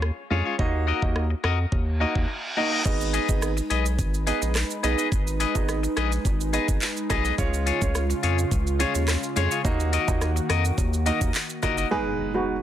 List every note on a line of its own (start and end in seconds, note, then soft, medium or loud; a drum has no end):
0.00 0.11 D#2 medium
0.00 cross-stick medium
0.30 0.42 F2 medium
0.30 0.52 G#3 medium
0.30 0.52 C#4 medium
0.30 0.44 F4 medium
0.30 0.53 F4 medium
0.30 0.45 G#4 medium
0.30 0.53 C#5 medium
0.30 0.44 C#5 medium
0.45 0.56 F4 medium
0.45 0.56 G#4 medium
0.45 0.55 C#5 medium
0.59 0.93 D#2 loud
0.59 0.99 A#3 medium
0.59 0.99 D#4 medium
0.59 0.99 F#4 medium
0.59 0.99 D#5 loud
0.59 kick loud
0.87 1.01 F#4 medium
0.87 1.01 A#4 medium
0.87 1.02 D#5 medium
1.02 1.35 D#2 loud
1.02 1.23 A#3 medium
1.02 1.23 D#4 medium
1.02 1.23 F#4 medium
1.02 1.23 D#5 medium
1.02 kick loud
1.16 cross-stick medium
1.30 muted clean electric guitar stroke soft
1.44 1.66 F2 loud
1.44 1.58 F#4 medium
1.44 1.58 A#4 medium
1.44 1.58 D#5 loud
1.44 cross-stick loud
1.72 2.06 D#2 loud
1.72 kick loud
1.72 reverse cymbal medium
2.00 2.22 A#3 medium
2.00 2.22 D#4 medium
2.00 2.14 F#4 medium
2.00 2.22 F#4 medium
2.00 2.15 A#4 medium
2.00 2.22 D#5 medium
2.00 2.14 D#5 medium
2.15 2.26 D#2 medium
2.15 muted clean electric guitar stroke soft
2.15 kick loud
2.57 2.79 A#3 medium
2.57 2.79 D#4 medium
2.57 2.71 F#4 medium
2.57 2.79 F#4 medium
2.57 2.71 A#4 medium
2.57 2.79 D#5 medium
2.57 2.71 D#5 medium
2.72 2.82 F#4 medium
2.72 2.82 A#4 medium
2.72 2.82 D#5 medium
2.85 3.19 G#1 loud
2.85 9.61 G#3 medium
2.85 3.25 B3 medium
2.85 3.25 D#4 medium
2.85 7.34 D#4 medium
2.85 3.25 G#4 medium
2.85 7.34 B4 medium
2.85 3.25 D#5 loud
2.85 kick loud
2.85 crash medium
2.85 shaker medium
2.85 maracas medium
3.01 shaker medium
3.01 maracas medium
3.13 3.27 G#4 medium
3.13 3.28 B4 medium
3.13 3.28 D#5 medium
3.13 closed hi-hat medium
3.13 shaker medium
3.13 maracas soft
3.29 3.61 G#1 loud
3.29 3.49 B3 medium
3.29 3.50 D#4 medium
3.29 3.50 G#4 medium
3.29 3.50 D#5 medium
3.29 kick medium
3.29 maracas medium
3.29 shaker medium
3.42 cross-stick medium
3.42 maracas medium
3.42 shaker medium
3.57 muted clean electric guitar stroke soft
3.57 shaker soft
3.57 maracas medium
3.70 4.00 B1 medium
3.70 3.84 G#4 medium
3.70 3.84 B4 medium
3.70 3.85 D#5 medium
3.70 closed hi-hat medium
3.70 shaker medium
3.85 shaker medium
3.85 maracas medium
3.99 4.32 G#1 loud
3.99 kick loud
3.99 maracas medium
3.99 shaker medium
4.14 shaker soft
4.14 maracas soft
4.27 4.49 B3 medium
4.27 4.49 D#4 medium
4.27 4.41 G#4 medium
4.27 4.49 G#4 medium
4.27 4.41 B4 medium
4.27 4.49 D#5 medium
4.27 4.41 D#5 medium
4.27 closed hi-hat medium
4.27 shaker medium
4.27 maracas medium
4.42 4.64 A#1 medium
4.42 muted clean electric guitar stroke medium
4.42 shaker medium
4.42 maracas medium
4.55 cross-stick medium
4.55 clap loud
4.55 maracas medium
4.55 shaker medium
4.70 maracas medium
4.70 shaker medium
4.83 4.95 B1 medium
4.83 5.05 B3 medium
4.83 5.05 D#4 medium
4.83 4.97 G#4 medium
4.83 5.05 G#4 medium
4.83 4.98 B4 loud
4.83 5.05 D#5 medium
4.83 4.97 D#5 loud
4.83 closed hi-hat medium
4.83 maracas medium
4.83 shaker medium
4.98 5.09 G#4 medium
4.98 5.08 B4 medium
4.98 5.08 D#5 medium
4.98 maracas medium
4.98 shaker medium
5.12 5.45 G#1 loud
5.12 kick loud
5.12 shaker medium
5.12 maracas medium
5.27 shaker medium
5.27 maracas medium
5.40 5.54 G#4 medium
5.40 5.54 B4 medium
5.40 5.54 D#5 loud
5.40 closed hi-hat medium
5.40 shaker medium
5.40 maracas soft
5.55 5.87 G#1 medium
5.55 5.76 B3 medium
5.55 5.76 D#4 medium
5.55 5.76 G#4 medium
5.55 5.76 D#5 medium
5.55 kick medium
5.55 high timbale medium
5.55 shaker medium
5.55 maracas medium
5.68 cross-stick medium
5.68 maracas medium
5.68 shaker medium
5.83 muted clean electric guitar stroke medium
5.83 shaker soft
5.83 maracas medium
5.97 6.19 A#1 medium
5.97 6.11 G#4 medium
5.97 6.11 B4 medium
5.97 6.11 D#5 medium
5.97 cross-stick loud
5.97 closed hi-hat medium
5.97 shaker medium
6.12 shaker medium
6.12 maracas medium
6.25 6.59 G#1 loud
6.25 kick loud
6.25 high timbale soft
6.25 maracas medium
6.25 shaker medium
6.41 shaker soft
6.41 maracas medium
6.53 6.75 B3 medium
6.53 6.75 D#4 medium
6.53 6.67 G#4 medium
6.53 6.75 G#4 medium
6.53 6.67 B4 medium
6.53 6.75 D#5 medium
6.53 6.67 D#5 medium
6.53 closed hi-hat medium
6.53 shaker medium
6.53 maracas medium
6.68 6.79 G#1 medium
6.68 muted clean electric guitar stroke soft
6.68 kick loud
6.68 shaker medium
6.68 maracas medium
6.82 clap medium
6.82 maracas medium
6.82 shaker medium
6.97 maracas medium
6.97 shaker medium
7.10 7.32 B1 medium
7.10 7.32 B3 medium
7.10 7.32 D#4 medium
7.10 7.24 G#4 loud
7.10 7.32 G#4 medium
7.10 7.24 B4 loud
7.10 7.32 D#5 medium
7.10 7.24 D#5 loud
7.10 kick medium
7.10 cross-stick loud
7.10 closed hi-hat medium
7.10 high timbale medium
7.10 maracas medium
7.10 shaker medium
7.25 7.35 G#4 medium
7.25 7.35 B4 medium
7.25 7.34 D#5 medium
7.25 maracas medium
7.25 shaker medium
7.38 7.72 C#2 loud
7.38 9.62 C#3 medium
7.38 7.78 G#3 loud
7.38 7.78 C#4 medium
7.38 9.62 F4 medium
7.38 7.78 F4 medium
7.38 7.78 C#5 loud
7.38 kick loud
7.38 shaker medium
7.38 maracas medium
7.53 shaker medium
7.53 maracas medium
7.66 7.80 F4 medium
7.66 7.81 G#4 medium
7.66 7.81 C#5 medium
7.66 closed hi-hat medium
7.66 shaker medium
7.66 maracas soft
7.81 8.14 C#2 loud
7.81 8.02 G#3 medium
7.81 8.02 C#4 medium
7.81 8.03 F4 medium
7.81 8.03 C#5 medium
7.81 kick loud
7.81 maracas medium
7.81 shaker medium
7.95 cross-stick medium
7.95 maracas medium
7.95 shaker medium
8.10 muted clean electric guitar stroke soft
8.10 shaker soft
8.10 maracas medium
8.23 8.45 F2 medium
8.23 8.37 F4 medium
8.23 8.37 G#4 medium
8.23 8.38 C#5 medium
8.23 closed hi-hat medium
8.23 shaker medium
8.38 shaker medium
8.38 maracas medium
8.51 8.85 C#2 loud
8.51 kick loud
8.51 maracas medium
8.51 shaker medium
8.67 shaker soft
8.67 maracas soft
8.79 9.01 G#3 medium
8.79 9.01 C#4 medium
8.79 8.94 F4 medium
8.79 9.02 F4 medium
8.79 8.94 G#4 medium
8.79 9.02 C#5 medium
8.79 8.93 C#5 loud
8.79 closed hi-hat medium
8.79 shaker medium
8.79 maracas medium
8.95 9.17 D#2 medium
8.95 muted clean electric guitar stroke soft
8.95 shaker medium
8.95 maracas medium
9.08 cross-stick loud
9.08 clap loud
9.08 maracas medium
9.08 shaker medium
9.23 maracas medium
9.23 shaker medium
9.36 9.48 F2 medium
9.36 9.58 G#3 medium
9.36 9.58 C#4 medium
9.36 9.50 F4 medium
9.36 9.58 F4 medium
9.36 9.50 G#4 medium
9.36 9.58 C#5 medium
9.36 9.50 C#5 loud
9.36 closed hi-hat medium
9.36 maracas medium
9.36 shaker medium
9.51 9.61 F4 medium
9.51 9.61 G#4 medium
9.51 9.61 C#5 medium
9.51 maracas medium
9.51 shaker medium
9.64 9.98 D#2 loud
9.64 11.89 D#3 medium
9.64 10.04 A#3 loud
9.64 11.89 A#3 medium
9.64 10.04 D#4 medium
9.64 10.05 F#4 medium
9.64 11.89 F#4 medium
9.64 10.05 D#5 loud
9.64 kick loud
9.64 shaker medium
9.64 maracas medium
9.80 shaker medium
9.80 maracas medium
9.93 10.07 F#4 medium
9.93 10.07 A#4 medium
9.93 10.07 D#5 loud
9.93 closed hi-hat medium
9.93 shaker medium
9.93 maracas soft
10.08 10.40 D#2 loud
10.08 10.29 A#3 medium
10.08 10.29 D#4 medium
10.08 10.29 F#4 medium
10.08 10.29 D#5 medium
10.08 kick loud
10.08 high timbale medium
10.08 maracas medium
10.08 shaker medium
10.21 cross-stick medium
10.21 maracas medium
10.21 shaker medium
10.36 muted clean electric guitar stroke medium
10.36 shaker soft
10.36 maracas medium
10.49 10.72 F2 medium
10.49 10.63 F#4 medium
10.49 10.64 A#4 medium
10.49 10.64 D#5 medium
10.49 cross-stick loud
10.49 closed hi-hat medium
10.49 shaker medium
10.65 shaker medium
10.65 maracas medium
10.78 11.11 D#2 loud
10.78 kick loud
10.78 high timbale soft
10.78 maracas medium
10.78 shaker medium
10.93 shaker soft
10.93 maracas soft
11.06 11.28 A#3 medium
11.06 11.28 D#4 medium
11.06 11.20 F#4 medium
11.06 11.28 F#4 medium
11.06 11.20 A#4 medium
11.06 11.28 D#5 medium
11.06 11.20 D#5 medium
11.06 closed hi-hat medium
11.06 shaker medium
11.06 maracas medium
11.21 11.32 D#2 medium
11.21 muted clean electric guitar stroke soft
11.21 kick loud
11.21 shaker medium
11.21 maracas medium
11.34 clap medium
11.34 maracas medium
11.34 shaker medium
11.49 maracas medium
11.49 shaker medium
11.63 11.85 F#1 medium
11.63 11.84 A#3 medium
11.63 11.84 D#4 medium
11.63 11.77 F#4 loud
11.63 11.85 F#4 medium
11.63 11.77 A#4 loud
11.63 11.85 D#5 medium
11.63 11.76 D#5 loud
11.63 kick medium
11.63 cross-stick loud
11.63 closed hi-hat medium
11.63 high timbale medium
11.63 maracas medium
11.63 shaker medium
11.77 11.88 F#4 soft
11.77 11.88 A#4 medium
11.77 11.87 D#5 medium
11.77 maracas medium
11.77 shaker medium
11.91 12.31 G#3 loud
11.91 12.31 B3 medium
11.91 12.31 D#4 medium
11.91 12.04 G#4 loud
11.91 12.31 B4 loud
11.91 impact medium
12.34 12.55 G#3 medium
12.34 12.55 B3 medium
12.34 12.55 D#4 medium
12.34 12.46 F#4 medium
12.34 12.55 B4 medium